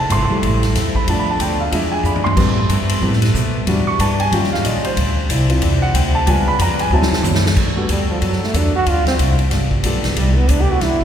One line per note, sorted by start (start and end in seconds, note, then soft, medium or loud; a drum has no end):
0.00 2.34 C3 medium
0.00 1.06 C4 medium
0.00 1.06 E4 medium
0.00 1.71 A4 medium
0.00 0.10 A5 medium
0.10 0.29 G1 loud
0.10 0.31 F3 medium
0.10 0.32 A3 medium
0.10 0.32 C4 medium
0.10 0.32 E4 medium
0.10 0.60 C6 medium
0.10 kick soft
0.10 hi-hat pedal medium
0.10 ride medium
0.30 0.73 G3 soft
0.30 0.73 A3 soft
0.30 0.74 E4 medium
0.30 muted upright bass stroke soft
0.42 0.74 A1 loud
0.42 0.64 F3 soft
0.42 0.64 A3 soft
0.42 0.64 C4 medium
0.42 0.65 E4 medium
0.42 kick soft
0.42 ride medium
0.63 snare soft
0.63 ride medium
0.75 0.94 E2 medium
0.75 0.96 F3 medium
0.75 0.97 A3 medium
0.75 0.97 C4 medium
0.75 0.97 E4 medium
0.75 kick soft
0.75 snare soft
0.75 hi-hat pedal medium
0.75 ride medium
0.95 1.08 B5 medium
0.95 muted upright bass stroke soft
0.95 kick medium
1.07 1.39 F2 medium
1.07 1.28 B2 soft
1.07 1.57 F3 medium
1.07 1.29 A3 soft
1.07 1.58 A3 soft
1.07 1.72 B3 medium
1.07 2.36 D4 medium
1.07 1.29 D4 soft
1.07 1.58 D4 medium
1.07 1.29 F4 medium
1.07 1.19 A5 medium
1.07 kick soft
1.07 ride medium
1.20 1.30 B5 medium
1.31 1.40 A5 medium
1.39 1.71 D2 loud
1.39 1.61 B2 medium
1.39 1.62 A3 medium
1.39 1.62 D4 medium
1.39 1.62 F4 medium
1.39 1.60 G5 medium
1.39 kick soft
1.39 hi-hat pedal medium
1.39 ride medium
1.60 1.72 F5 medium
1.71 2.03 E2 medium
1.71 1.93 E3 soft
1.71 2.22 F3 soft
1.71 2.22 G#3 soft
1.71 1.94 G#3 medium
1.71 2.23 D4 medium
1.71 1.94 D4 medium
1.71 2.36 E4 medium
1.71 1.94 F4 medium
1.71 2.36 G#4 medium
1.71 1.92 E5 medium
1.71 kick soft
1.71 ride medium
1.92 2.04 G#5 medium
2.03 2.36 F2 medium
2.03 2.26 E3 medium
2.03 2.26 G#3 medium
2.03 2.26 D4 medium
2.03 2.27 F4 medium
2.03 2.25 B5 medium
2.03 hi-hat pedal medium
2.16 floor tom medium
2.24 2.98 C6 medium
2.24 floor tom medium
2.36 2.69 A2 medium
2.36 2.60 G3 medium
2.36 3.66 G3 medium
2.36 2.58 A3 soft
2.36 3.66 A3 medium
2.36 2.61 B3 soft
2.36 4.30 B3 medium
2.36 2.61 C4 medium
2.36 2.59 C4 medium
2.36 2.59 G4 medium
2.36 3.67 A4 medium
2.36 2.59 B4 medium
2.36 kick medium
2.36 crash medium
2.69 3.01 G2 loud
2.69 2.91 A3 medium
2.69 2.91 C4 medium
2.69 2.91 G4 medium
2.69 2.91 B4 medium
2.69 kick soft
2.69 hi-hat pedal medium
2.69 ride medium
2.89 ride medium
3.01 3.34 A2 loud
3.01 3.20 G3 soft
3.01 3.23 A3 medium
3.01 3.20 B3 soft
3.01 3.20 C4 soft
3.01 3.23 C4 medium
3.01 3.24 G4 medium
3.01 3.24 B4 medium
3.01 kick soft
3.13 snare soft
3.22 snare soft
3.22 ride medium
3.34 3.66 B2 medium
3.34 3.56 A3 medium
3.34 3.56 C4 medium
3.34 3.56 G4 medium
3.34 3.56 B4 medium
3.34 kick soft
3.34 hi-hat pedal medium
3.66 3.98 E2 medium
3.66 4.31 E3 medium
3.66 3.88 E3 medium
3.66 3.91 G3 medium
3.66 4.31 D4 medium
3.66 3.91 D4 soft
3.66 3.89 D4 medium
3.66 3.92 F#4 medium
3.66 4.95 G4 medium
3.66 3.89 G4 medium
3.66 3.89 B4 medium
3.66 kick soft
3.66 ride medium
3.87 3.99 C#6 medium
3.99 4.31 G2 loud
3.99 4.21 E3 medium
3.99 4.21 D4 medium
3.99 4.21 G4 medium
3.99 4.21 B4 medium
3.99 4.19 A5 medium
3.99 kick soft
3.99 hi-hat pedal medium
3.99 ride medium
4.20 4.32 G#5 loud
4.20 ride medium
4.32 4.63 D#2 loud
4.32 4.53 D#3 soft
4.32 4.82 G3 soft
4.32 4.54 G3 medium
4.32 6.26 G3 medium
4.32 4.82 C#4 soft
4.32 4.97 C#4 medium
4.32 4.54 C#4 medium
4.32 4.97 D#4 medium
4.32 4.82 F4 medium
4.32 4.54 F4 medium
4.32 4.52 G5 medium
4.32 kick soft
4.32 ride medium
4.43 snare soft
4.53 4.65 F5 medium
4.53 snare medium
4.64 4.96 A#1 medium
4.64 4.86 D#3 medium
4.64 4.86 G3 medium
4.64 4.86 C#4 medium
4.64 4.86 F4 medium
4.64 4.85 D#5 medium
4.64 kick soft
4.64 hi-hat pedal medium
4.64 ride medium
4.84 5.15 C5 medium
4.84 ride medium
4.96 5.28 D2 medium
4.96 5.18 D3 soft
4.96 5.18 F3 soft
4.96 6.25 C4 medium
4.96 5.19 C4 medium
4.96 6.25 D4 medium
4.96 5.19 E4 medium
4.96 6.25 C5 medium
4.96 kick soft
4.96 ride medium
5.29 5.61 C2 loud
5.29 5.51 D3 medium
5.29 5.51 F3 medium
5.29 5.51 C4 medium
5.29 5.51 E4 medium
5.29 kick soft
5.29 hi-hat pedal medium
5.29 ride medium
5.49 6.23 C4 soft
5.49 6.23 E4 medium
5.49 6.22 F4 medium
5.49 ride medium
5.62 5.93 E2 loud
5.62 5.83 D3 medium
5.62 5.83 F3 medium
5.62 5.84 C4 medium
5.62 5.84 E4 medium
5.62 kick soft
5.62 ride medium
5.82 5.94 F#5 medium
5.94 6.26 D2 loud
5.94 6.16 D3 medium
5.94 6.16 F3 medium
5.94 6.16 C4 medium
5.94 6.16 E4 medium
5.94 6.14 G5 medium
5.94 kick soft
5.94 hi-hat pedal medium
5.94 ride medium
6.15 6.27 A5 loud
6.26 6.45 C#2 medium
6.26 6.48 C#3 soft
6.26 6.50 G3 medium
6.26 6.48 G3 medium
6.26 6.92 G3 medium
6.26 6.51 B3 soft
6.26 6.48 B3 medium
6.26 6.91 C#4 medium
6.26 6.51 F4 medium
6.26 6.91 F4 medium
6.26 6.49 F4 medium
6.26 6.92 B4 medium
6.26 6.47 G#5 medium
6.26 kick soft
6.26 ride medium
6.46 6.59 B5 loud
6.46 muted upright bass stroke soft
6.59 6.90 F2 loud
6.59 6.80 C#3 medium
6.59 6.81 G3 medium
6.59 6.81 B3 medium
6.59 6.81 F4 medium
6.59 6.80 A#5 medium
6.59 kick soft
6.59 hi-hat pedal medium
6.59 ride medium
6.79 6.92 G#5 medium
6.79 ride medium
6.90 7.09 D2 loud
6.90 7.13 D3 medium
6.90 7.39 F#3 medium
6.90 7.16 F#3 medium
6.90 7.13 F#3 medium
6.90 7.16 C4 medium
6.90 7.14 C4 medium
6.90 7.39 D4 medium
6.90 7.39 E4 medium
6.90 7.16 E4 medium
6.90 7.39 C5 medium
6.90 7.41 A5 medium
6.94 7.14 E4 medium
7.02 snare medium
7.11 muted upright bass stroke soft
7.11 snare medium
7.23 7.55 F#2 loud
7.23 7.45 D3 medium
7.23 7.45 F#3 medium
7.23 7.45 C4 medium
7.23 7.46 E4 medium
7.23 hi-hat pedal medium
7.23 high tom medium
7.34 snare medium
7.46 snare loud
7.56 7.88 G2 medium
7.56 7.77 G3 soft
7.56 8.85 G3 medium
7.56 7.78 B3 medium
7.56 8.85 B3 medium
7.56 8.85 F#4 medium
7.56 7.78 F#4 medium
7.56 8.85 A4 medium
7.56 7.78 A4 medium
7.56 kick medium
7.56 crash medium
7.77 7.88 G3 medium
7.77 7.88 A3 medium
7.77 7.88 B3 medium
7.77 7.88 D4 medium
7.77 7.88 F#4 medium
7.89 8.20 D2 medium
7.89 8.10 G3 medium
7.89 8.08 G3 medium
7.89 8.11 B3 medium
7.89 8.11 F#4 medium
7.89 8.11 A4 medium
7.89 kick soft
7.89 hi-hat pedal medium
7.89 ride medium
8.11 8.26 F3 medium
8.21 8.40 F#2 loud
8.21 8.43 F#3 medium
8.21 8.42 G3 soft
8.21 8.43 B3 medium
8.21 8.43 F#4 medium
8.21 8.43 A4 medium
8.21 kick soft
8.21 ride medium
8.32 snare soft
8.41 8.58 A3 medium
8.41 muted upright bass stroke soft
8.41 snare soft
8.54 8.85 E2 loud
8.54 8.75 G3 medium
8.54 8.75 B3 medium
8.54 8.75 D4 medium
8.54 8.75 F#4 medium
8.54 8.76 A4 medium
8.54 kick soft
8.54 hi-hat pedal medium
8.54 ride medium
8.76 8.91 F#4 loud
8.86 9.17 D2 medium
8.86 9.08 D3 soft
8.86 9.08 F3 soft
8.86 9.50 C4 medium
8.86 9.08 C4 medium
8.86 9.50 D4 medium
8.86 9.50 E4 medium
8.86 9.09 E4 soft
8.86 9.50 F4 medium
8.86 9.07 F4 loud
8.86 kick soft
8.86 ride medium
9.06 9.15 C4 medium
9.06 snare medium
9.06 ride medium
9.18 9.50 C2 medium
9.18 9.40 D3 medium
9.18 9.40 F3 medium
9.18 9.40 C4 medium
9.18 9.41 E4 medium
9.18 kick soft
9.18 hi-hat pedal medium
9.18 ride medium
9.39 ride soft
9.51 9.82 G1 medium
9.51 10.15 F3 medium
9.51 9.72 G3 medium
9.51 10.15 A3 medium
9.51 11.04 B3 medium
9.51 9.72 B3 medium
9.51 9.73 F4 medium
9.51 10.15 G4 medium
9.51 9.73 A4 medium
9.51 kick soft
9.51 snare soft
9.51 ride medium
9.71 kick medium
9.83 10.15 B1 medium
9.83 10.16 F3 medium
9.83 10.05 G3 medium
9.83 10.16 A3 medium
9.83 10.05 B3 medium
9.83 10.16 B3 medium
9.83 10.17 D4 medium
9.83 10.05 F4 medium
9.83 10.17 G4 medium
9.83 10.06 A4 medium
9.83 kick soft
9.83 hi-hat pedal medium
9.83 ride medium
10.04 snare medium
10.04 ride soft
10.16 10.47 C2 medium
10.16 10.37 C3 soft
10.16 11.04 D3 medium
10.16 10.37 E3 medium
10.16 10.39 G3 medium
10.16 10.38 B3 soft
10.16 11.04 C4 medium
10.16 10.38 D4 medium
10.16 11.04 E4 medium
10.16 kick soft
10.16 ride medium
10.37 10.53 B3 medium
10.48 10.80 D2 loud
10.48 10.70 C3 medium
10.48 10.70 E3 medium
10.48 10.70 B3 medium
10.48 10.70 D4 medium
10.48 10.63 D4 medium
10.48 kick soft
10.48 hi-hat pedal medium
10.48 ride medium
10.61 10.74 G4 loud
10.73 10.85 F#4 medium
10.81 11.04 E2 loud
10.81 11.02 C3 medium
10.81 11.02 E3 medium
10.81 11.03 B3 medium
10.81 11.03 D4 medium
10.81 11.04 E4 medium
10.81 kick soft
10.81 snare soft
10.81 ride medium
11.01 kick medium